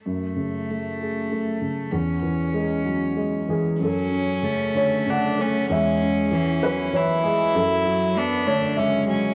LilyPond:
<<
  \new Staff \with { instrumentName = "Violin" } { \time 3/4 \key fis \minor \tempo 4 = 97 r2. | r2. | cis'2 d'8 cis'8 | cis'2 e'4~ |
e'4 d'4 cis'8 cis'8 | }
  \new Staff \with { instrumentName = "Cello" } { \clef bass \time 3/4 \key fis \minor a2. | cis'2~ cis'8 r8 | fis4 a2 | gis4 e4 e4 |
fis4 b8 a8 gis4 | }
  \new Staff \with { instrumentName = "Upright piano" } { \time 3/4 \key fis \minor r2. | r2 r8 gis'8 | a'4. cis''8 fis''4 | e''4. b'8 cis''8 gis'8 |
a'4. cis''8 e''4 | }
  \new Staff \with { instrumentName = "Upright piano" } { \clef bass \time 3/4 \key fis \minor fis,8 cis8 a8 gis'8 a8 cis8 | e,8 e8 gis8 fis8 gis8 e8 | fis,8 cis'8 cis8 d8 cis8 a8 | e,8 cis'8 e8 fis8 e8 gis8 |
fis,8 fis'4 d8 cis8 fis8 | }
>>